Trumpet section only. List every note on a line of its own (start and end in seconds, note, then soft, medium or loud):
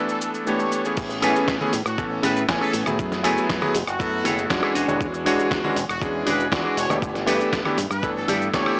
0.09 0.17 A4 medium
0.21 0.30 A4 medium
0.46 0.97 C#5 medium
1.85 2.04 F#4 medium
2.23 2.41 B4 medium
2.60 2.79 A4 loud
3.87 4.58 F#4 loud
5.89 6.07 F#4 loud
6.27 6.45 B4 medium
6.77 6.95 C#5 medium
7.91 8.09 B4 medium
8.17 8.24 A4 medium
8.29 8.37 A4 medium
8.54 8.80 C#5 medium